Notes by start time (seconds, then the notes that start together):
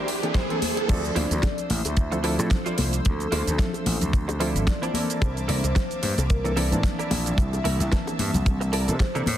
Already playing: A#3 D4 E4 G4 C5 D5, riser
0.08 open hi-hat
0.23 E3 A#3 C4 D4 A4, muted clean electric guitar stroke, closed hi-hat
0.34 E4 A4 A#4 C5 E5, kick, snare, closed hi-hat, high bongo
0.50 E3 A#3 C4 D4 A4, closed hi-hat
0.62 open hi-hat, high conga
0.77 muted clean electric guitar stroke, closed hi-hat, high bongo
0.88 D2 F3 C4 D4 A4 C5 D5 E5 E6, kick, closed hi-hat, crash, high bongo, shaker
1.04 closed hi-hat, shaker
1.15 D2 E4 F4 C5 D5, open hi-hat, high conga
1.31 D2, closed hi-hat, shaker
1.43 muted clean electric guitar stroke, kick, snare, closed hi-hat, high bongo, shaker
1.58 closed hi-hat, shaker
1.70 A1 E5, open hi-hat, high conga
1.85 D2, closed hi-hat, high bongo, shaker
1.97 kick, closed hi-hat, shaker
2.12 F3 C4 D4 E4 A4, muted clean electric guitar stroke, closed hi-hat, shaker
2.23 F3 C4 D4 E4 F4 A4 C5 D5, open hi-hat
2.38 A2 F3 C4 D4 A4, closed hi-hat, high bongo, shaker
2.51 C5, kick, snare, closed hi-hat, shaker
2.66 E4 F4 C5 D5, closed hi-hat, shaker
2.78 C2 A4, open hi-hat, high bongo, high conga
2.93 closed hi-hat, shaker
3.05 D2, kick, closed hi-hat, shaker
3.20 closed hi-hat, shaker
3.32 D2 E4 F4 C5 D5, open hi-hat, high bongo, high conga
3.47 D2, closed hi-hat, shaker
3.58 F3 C4 D4 A4 E5, muted clean electric guitar stroke, kick, snare, closed hi-hat, shaker
3.74 closed hi-hat, high bongo, shaker
3.86 A1, open hi-hat, high conga
4.01 D2, closed hi-hat, low conga, shaker
4.13 kick, closed hi-hat, shaker
4.28 muted clean electric guitar stroke, closed hi-hat, high bongo, shaker
4.40 F3 C4 D4 E4 F4 A4 C5 D5 E5, open hi-hat
4.55 A1, closed hi-hat, shaker
4.67 D5, kick, snare, closed hi-hat, high bongo, shaker
4.81 E3 A#3 C4 D4 E4 F4 C5 D5 A5, closed hi-hat, shaker
4.94 A#3 E4 A4 A#4 D5 E5 A5 D6, open hi-hat, high conga
5.10 closed hi-hat, shaker
5.21 C2 C5, kick, closed hi-hat, high bongo, shaker
5.37 closed hi-hat, shaker
5.48 C2 E4 A4 A#4 D5, open hi-hat, high conga
5.64 C2, closed hi-hat, high bongo, shaker
5.75 muted clean electric guitar stroke, kick, snare, closed hi-hat, shaker
5.91 closed hi-hat, shaker
6.03 G2 C5, open hi-hat, high conga
6.18 C2, closed hi-hat, high bongo, shaker
6.30 A#4, kick, closed hi-hat, shaker
6.45 E3 A#3 C4 D4 A4, muted clean electric guitar stroke, closed hi-hat, shaker
6.56 E3 A#3 C4 D4 E4 A4 A#4 D5, open hi-hat, high bongo
6.71 A2 E3 A#3 C4 D4 A5, closed hi-hat, shaker
6.83 kick, snare, closed hi-hat, shaker
6.99 E4 A4 A#4 D5, closed hi-hat, shaker
7.11 A#1 E6, open hi-hat, high bongo, high conga
7.26 closed hi-hat, shaker
7.37 C2 E5, kick, closed hi-hat, shaker
7.53 closed hi-hat, high bongo, shaker
7.64 C2 E4 A4 A#4 E5, open hi-hat, high conga
7.80 C2, closed hi-hat, shaker
7.91 E3 A#3 C4 D4 A5, muted clean electric guitar stroke, kick, snare, closed hi-hat, shaker
8.07 closed hi-hat, high bongo, shaker
8.19 G2, open hi-hat, high conga
8.33 C2, closed hi-hat, low conga, shaker
8.46 kick, closed hi-hat, high bongo, shaker
8.61 muted clean electric guitar stroke, closed hi-hat, shaker
8.73 E4 A4 A#4 D5, open hi-hat
8.88 C3 E3 A#3 C4 D4 A4, closed hi-hat, shaker
9.00 C5, kick, snare, closed hi-hat, high bongo, shaker
9.15 C3 E3 A#3 C4 D4 E4 A4 A#4 D5, closed hi-hat, shaker
9.26 A2, open hi-hat, high conga